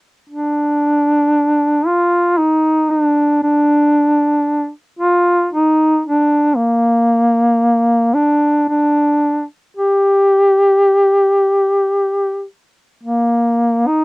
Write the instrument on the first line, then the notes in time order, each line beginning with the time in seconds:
duduk
0.30 D4
1.86 F4
2.38 D#4
2.91 D4
3.43 D4
4.99 F4
5.53 D#4
6.06 D4
6.56 A#3
8.14 D4
8.69 D4
9.77 G4
13.03 A#3
13.87 D#4